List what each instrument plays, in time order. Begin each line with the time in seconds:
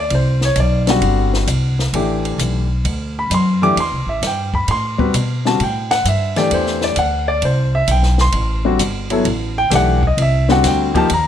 Already playing: grand piano D5
0.10 upright bass C2, ride
0.15 grand piano C5
0.41 grand piano C#5, snare
0.56 upright bass B1, hi-hat pedal, ride
0.60 grand piano D5
0.87 grand piano D3 G3 C4 F#4 F#5, snare, ride
1.01 upright bass G1, ride
1.34 snare
1.47 upright bass C2, hi-hat pedal, ride
1.79 snare
1.93 upright bass A1, grand piano E3 A3 D4 G4, ride
2.25 ride
2.38 upright bass B1, hi-hat pedal, ride
2.84 upright bass D2, ride
3.19 grand piano B5
3.30 upright bass F#2, hi-hat pedal, ride
3.34 grand piano C6
3.62 grand piano E3 A3 D4 G4 D6
3.76 upright bass E2, ride
3.80 grand piano C6
3.92 upright bass C2
4.06 upright bass A1, grand piano E5
4.22 upright bass G2, snare, hi-hat pedal, ride
4.27 grand piano G5
4.54 grand piano B5, kick
4.68 upright bass A2, grand piano C6, ride
4.98 grand piano G3 C4 F#4 B4, kick
5.14 upright bass B2, hi-hat pedal, ride
5.45 grand piano D3 G3 C4 F#4 A5, snare
5.60 upright bass A2, grand piano G5, ride
5.91 grand piano F#5, snare, ride
6.05 upright bass G2, grand piano E5, hi-hat pedal, ride
6.36 grand piano E3 A3 D4 G4 D5, snare, ride
6.51 upright bass E2, grand piano C5, ride
6.66 snare
6.81 grand piano D5, snare
6.96 upright bass D2, grand piano F#5, hi-hat pedal, ride
7.28 grand piano D5
7.42 upright bass C2, grand piano C5, ride
7.75 grand piano E5
7.88 upright bass B1, grand piano G5, hi-hat pedal, ride
8.03 snare
8.18 grand piano C6, snare
8.32 upright bass A1, ride
8.65 grand piano D3 G3 C4 F#4
8.79 upright bass G1, hi-hat pedal, ride
9.10 grand piano F#3 B3 E4 A4, ride
9.25 upright bass A1, ride
9.58 grand piano G5
9.70 upright bass B1, grand piano E3 A3 D4 G4, snare, hi-hat pedal, ride
9.75 grand piano F#5
10.03 kick
10.07 grand piano D#5
10.17 upright bass C2, ride
10.22 grand piano E5
10.49 grand piano D3 G3 C4 F#4 F#5, snare
10.64 upright bass D2, grand piano G5, snare, hi-hat pedal, ride
10.94 grand piano F3 A#3 D#4 G4 A5, kick, ride
11.10 upright bass D#2, ride
11.14 grand piano A#5